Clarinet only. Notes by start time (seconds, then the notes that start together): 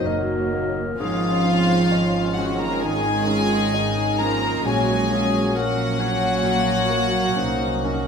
0.06 A#4
0.99 G#4
1.44 F4
3.73 D#4
4.20 F4
4.68 F#4
5.13 G#4
5.55 A#4
5.99 C#5
7.38 C5
7.84 A#4